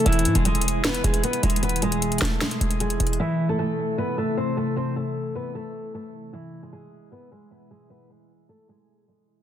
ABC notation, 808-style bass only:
X:1
M:4/4
L:1/16
Q:1/4=153
K:Ephr
V:1 name="808-style bass" clef=bass
E,,,2 ^G,, E,,,6- E,,, E,,,2 z2 E,,,2- | E,,,6 E,,,2 z2 E,,,4 E,,,2 | z16 | z16 |
z16 | z16 |]